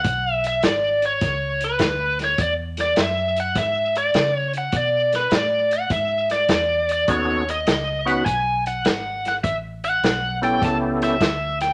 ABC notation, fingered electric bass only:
X:1
M:4/4
L:1/8
Q:"Swing" 1/4=102
K:Emix
V:1 name="Fingered electric bass" clef=bass
B,,,2 G,,,2 C,,2 D,,2 | E,,2 F,,2 G,,2 C,2 | B,,2 A,,2 G,,2 E,,2 | ^D,,2 C,,2 B,,,2 G,,,2 |
A,,,2 B,,,2 C,,2 D,,2 |]